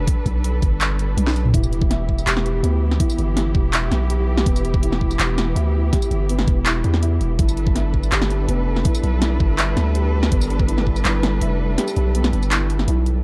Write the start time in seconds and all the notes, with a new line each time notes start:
Already playing: G3 D4 A4 B4
0.07 kick, closed hi-hat
0.26 B1, kick, closed hi-hat
0.44 closed hi-hat
0.62 G1, kick, closed hi-hat
0.81 clap, closed hi-hat
0.99 closed hi-hat
1.17 B1, closed hi-hat, high tom
1.27 snare
1.36 closed hi-hat
1.45 mid tom
1.53 E1 E3 B3 E4 G4, kick, closed hi-hat
1.63 tambourine
1.73 closed hi-hat
1.82 kick
1.90 E5, snare, closed hi-hat
2.09 kick
2.18 tambourine
2.27 E1 G4, clap, closed hi-hat
2.37 snare
2.46 closed hi-hat
2.63 D2 B3, closed hi-hat
2.91 snare
3.00 E4, kick, closed hi-hat
3.10 tambourine
3.18 G1, closed hi-hat
3.36 E4, snare, closed hi-hat
3.55 E1, kick
3.73 E5, clap, closed hi-hat
3.91 B1, snare, closed hi-hat
4.09 G4, closed hi-hat
4.37 snare
4.46 E1 B3, kick, closed hi-hat
4.56 tambourine
4.65 closed hi-hat
4.74 kick
4.83 E4, closed hi-hat
4.92 snare
5.01 kick
5.11 tambourine
5.19 E1 E4, clap, closed hi-hat
5.38 snare, closed hi-hat
5.56 D2 E5, closed hi-hat
5.93 G4, kick, snare, closed hi-hat
6.02 tambourine
6.11 G1, closed hi-hat
6.29 B3, closed hi-hat
6.39 snare
6.48 E1, kick, closed hi-hat
6.66 E4, clap, closed hi-hat
6.84 E2, closed hi-hat
6.94 snare
7.02 E4, closed hi-hat
7.21 E1, closed hi-hat
7.38 G1 G3 D4 E4 A4 B4, kick, closed hi-hat
7.49 tambourine
7.57 closed hi-hat
7.67 kick
7.75 E5, snare, closed hi-hat
7.94 kick
8.03 tambourine
8.12 G1 G4, clap, closed hi-hat
8.22 snare
8.30 closed hi-hat
8.48 F1 B3, closed hi-hat
8.76 snare
8.85 E4, kick, closed hi-hat
8.95 tambourine
9.03 B1, closed hi-hat
9.22 E4, snare, closed hi-hat
9.40 G1, kick
9.59 E5, clap, closed hi-hat
9.77 D2, snare, closed hi-hat
9.95 G4, closed hi-hat
10.23 snare
10.32 G1 B3, kick, closed hi-hat
10.41 tambourine
10.50 closed hi-hat
10.60 kick
10.68 E4, closed hi-hat
10.78 snare
10.87 kick
10.96 tambourine
11.05 G1 E4, clap, closed hi-hat
11.23 snare, closed hi-hat
11.41 F1 E5, closed hi-hat
11.78 G4, snare, closed hi-hat
11.88 tambourine
11.96 B1, closed hi-hat
12.15 B3, closed hi-hat
12.24 snare, tambourine
12.33 G1, closed hi-hat
12.43 tambourine
12.51 E4, clap, closed hi-hat
12.70 closed hi-hat
12.79 snare
12.88 B1 E4, closed hi-hat
13.06 closed hi-hat